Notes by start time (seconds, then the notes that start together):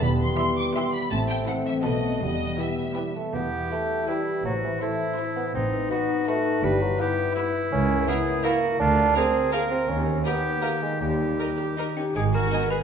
Already playing: B3
0.03 E1 E2 E3 G3 B5
0.21 E4 C6
0.39 B3 E4 G4 E5
0.57 C4 D6
0.75 B3 E4 G4 E5 C6
0.93 E4 B5
1.11 A1 A2 A3 C4 A5
1.29 G5
1.47 E3 C4 E4 A4 E5 F#5
1.66 F#3 E5
1.83 B1 B2 A3 B3 F#4 A4 B4 D#5
2.03 B3 F#4
2.21 E1 E2 E3 G3 B3 D#5
2.41 B3
2.59 G3 B3 E4 G4 B4 E5
2.78 A3
2.97 G3 B3 E4 G4 B4
3.16 A3 B3
3.34 E1 E2 E3 B3 E4 G4
3.53 B3
3.71 A3 E4 B4 G5
3.90 G4
4.07 G3 E4 B4 G5
4.26 G4
4.44 A1 A2 F#3 F#4 C5
4.63 E3
4.81 A3 C4 E4 C5 E5
5.00 E4
5.18 E4 A4 C5 E5
5.36 B3 E4
5.55 A1 A2 C4 D#4 B4
5.73 A3
5.91 B3 F#4 B4 D#5
6.09 D#4
6.27 A3 F#4 B4 D#5
6.45 D#4
6.63 G1 G2 G3 E4 B4
6.82 F#3 G3
7.00 B3 E4 G4 B4 E5
7.18 E4
7.36 E4 G4 B4 E5
7.54 E4
7.72 C#2 C#3 C#4 A#4
8.08 A#3 B3 E4 G#4 A#4 E5
8.26 E4
8.44 A#3 E4 F#4 A#4 E5
8.63 E4
8.80 D2 D3 D4 F4 G#4
8.98 G#3
9.16 A#3 C4 G#4 A#4 F5
9.35 F4
9.52 A#3 G#4 A#4 F5
9.71 C4 F4
9.89 D#2 D#3 C#4 G4 A#4
10.08 A#3
10.25 B3 D#4 G4 A#4 D#5
10.44 G4
10.63 A#3 G4 A#4 D#5
10.82 G#3 G4
11.01 D#2 D#3 G3 D#4 G4
11.21 A#3
11.39 D#4 A#4 D#5
11.58 G4 A#4
11.77 D#4 A#4 D#5
11.97 C#4 D#4 G4 A#4 G5
12.16 G#1 G#2 D#4 G#4 G#5
12.25 D#3
12.34 B3 F#4 A#4 A#5
12.44 D#4
12.52 B3 D#4 G#4 D#5 G#5
12.62 B4
12.70 G#4 B4 D#5 B5